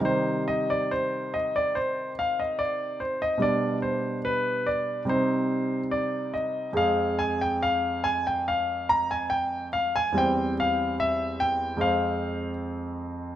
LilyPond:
<<
  \new Staff \with { instrumentName = "Grand piano" } { \time 4/4 \key c \minor \tempo 4 = 72 c''8 ees''16 d''16 c''8 ees''16 d''16 c''8 f''16 ees''16 d''8 c''16 ees''16 | d''8 c''8 b'8 d''8 c''4 d''8 ees''8 | f''8 aes''16 g''16 f''8 aes''16 g''16 f''8 bes''16 aes''16 g''8 f''16 aes''16 | g''8 f''8 e''8 g''8 f''4 r4 | }
  \new Staff \with { instrumentName = "Grand piano" } { \clef bass \time 4/4 \key c \minor <c ees g ees'>1 | <b, g d'>2 <c g c' ees'>2 | <f, aes c' aes'>1 | <e, g c' c''>2 <f, aes c' c''>2 | }
>>